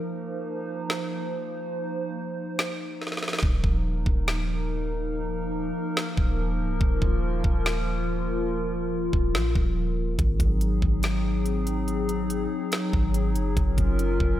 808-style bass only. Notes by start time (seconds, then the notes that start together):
3.43 D#1
3.64 D#1
4.06 D#1
6.18 D#1
6.60 C#1
6.81 D#1
7.02 D#1
7.44 D#1
9.13 D#1
9.34 A#1
9.55 D#1
10.19 G#1
10.40 G#1
10.82 G#1
12.93 G#1
13.36 F#1
13.57 F#1
13.78 F#1
14.20 F#1